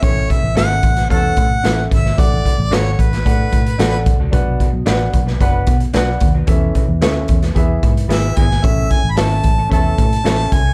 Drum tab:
HH |x-x-x-xxx-x-x-x-|x-x-x-xxx-xxx-x-|x-x-x-x-x-xxx-x-|x-x-x-xxx-xxx-x-|
SD |----o--o----o--o|----o--o----o---|----o--o----o---|----o--o----o--o|
BD |o-o---o-o-o---o-|o-o---o-o-o---o-|o-o---o-o-o---o-|o-o---o-o-o---o-|

HH |x-x-x-x-x-xxx-x-|
SD |----o-------o---|
BD |o-o---o-o-o---o-|